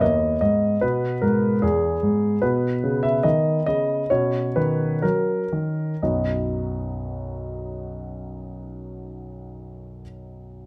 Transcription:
Already playing: B3
0.01 D#2 D#5
0.41 G#2 D#5
0.81 B2 B3 B4
1.22 G#2 A#4
1.62 E2 G#4
2.03 G#2
2.42 B2 B3 B4
2.84 C#3
3.03 E5
3.23 D#3 D#5
3.66 C#3 D#5
4.10 B2 C#4 C#5
4.56 D#3 B4
5.02 F#3 A#4
5.53 D#3
6.02 B1 F#2 F#3 B3 D#4 F#4 D#5

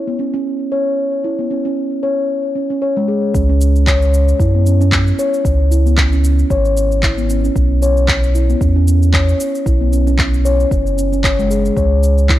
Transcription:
0.07 B3
0.19 C#4
0.34 C#4
0.72 C#5
1.24 E4
1.39 B3
1.51 C#4
1.65 C#4
2.03 C#5
2.55 C#4
2.70 C#4
2.82 C#5
2.97 G#3
3.08 G#4
3.34 C#2 C#4, kick, cabasa
3.49 C#4
3.61 cabasa
3.76 cabasa
3.87 C#5, kick, clap, cabasa
4.02 cabasa
4.14 cabasa
4.28 cabasa
4.40 F#2 E4, kick, cabasa
4.55 B3
4.66 C#4, cabasa
4.81 C#4, cabasa
4.92 kick, clap, cabasa
5.07 cabasa
5.19 C#5, cabasa
5.34 cabasa
5.45 C#2, kick, cabasa
5.71 E4, cabasa
5.86 B3, cabasa
5.98 C#4, kick, clap, cabasa
6.13 C#4, cabasa
6.24 cabasa
6.39 cabasa
6.50 G#1 C#5, kick, cabasa
6.65 cabasa
6.77 cabasa
6.92 cabasa
7.03 E4, kick, clap, cabasa
7.18 B3, cabasa
7.30 C#4, cabasa
7.44 C#4, cabasa
7.56 B1, kick, cabasa
7.82 C#5, cabasa
7.97 cabasa
8.08 kick, clap, cabasa
8.23 cabasa
8.35 E4, cabasa
8.50 B3, cabasa
8.61 E2 C#4, kick, cabasa
8.76 C#4
8.88 cabasa
9.02 cabasa
9.13 C#5, kick, clap, cabasa
9.29 cabasa
9.40 cabasa
9.55 cabasa
9.66 B1 E4, kick, cabasa
9.81 B3
9.92 C#4, cabasa
10.07 C#4, cabasa
10.19 kick, clap, cabasa
10.34 cabasa
10.45 C#5, cabasa
10.60 cabasa
10.71 F#1, kick, cabasa
10.86 cabasa
10.98 C#4, cabasa
11.12 C#4, cabasa
11.24 C#5, kick, clap, cabasa
11.39 G#3, cabasa
11.50 G#4, cabasa
11.65 cabasa
11.77 C#2 C#5, kick, cabasa
12.03 cabasa
12.18 cabasa
12.29 E4, kick, clap, cabasa

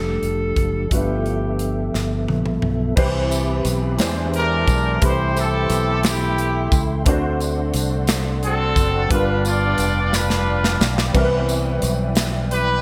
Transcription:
Already playing: F1 F3 G3 A3 D4 F4 G4 A4
0.22 F1, closed hi-hat
0.56 F#1, kick, closed hi-hat
0.90 G1 G2 A3 B3 E4 F4 G4 A4 E5, kick, closed hi-hat
0.94 B4
1.26 closed hi-hat
1.59 closed hi-hat
1.94 G1, snare
2.28 A#1, high tom
2.46 mid tom
2.62 B1, mid tom
2.96 C2 E3 C4 E4 G4 B4 C5 E5 B5, kick, crash
3.31 closed hi-hat, tambourine
3.65 B1, closed hi-hat, tambourine
3.98 E2 E3 G#3 D4 E4 G4 C5 D5 C6, snare, closed hi-hat, tambourine
4.34 D4 G4 A#4, closed hi-hat
4.68 B1, kick, closed hi-hat, tambourine
4.99 C2 E3 A3 C4 E4 G4 A4 G5, kick, closed hi-hat
5.04 E4 G4 B4 C5
5.11 C5
5.37 E4 A4, closed hi-hat, tambourine
5.70 B1, closed hi-hat, tambourine
6.03 E4 G4, snare, closed hi-hat, tambourine
6.38 closed hi-hat
6.72 C#2, kick, closed hi-hat, tambourine
7.04 D2 D3 A3 C4 D4 F#4 A4 D5 F#5, kick, closed hi-hat
7.09 C5
7.40 closed hi-hat, tambourine
7.74 C2, closed hi-hat, tambourine
8.07 snare, closed hi-hat, tambourine
8.43 C4 F#4 A4, closed hi-hat
8.76 F#1, kick, closed hi-hat, tambourine
9.08 G1 G2 G3 B3 D4 F4 B4 D5 F5 G5 D6, kick, closed hi-hat
9.12 D4 F4 A#4
9.20 B4
9.45 F4 B4 D5, closed hi-hat, tambourine
9.78 F1, closed hi-hat, tambourine
10.13 D4 F4 B4, snare, tambourine
10.30 snare
10.64 snare
10.81 B1, snare, tambourine
10.98 snare
11.12 C2 E3 G3 B3 C4 E4 E5, kick, crash
11.17 A#4
11.23 B4
11.49 closed hi-hat, tambourine
11.82 B1, closed hi-hat, tambourine
12.15 snare, closed hi-hat, tambourine
12.51 E4 G4 B4, closed hi-hat

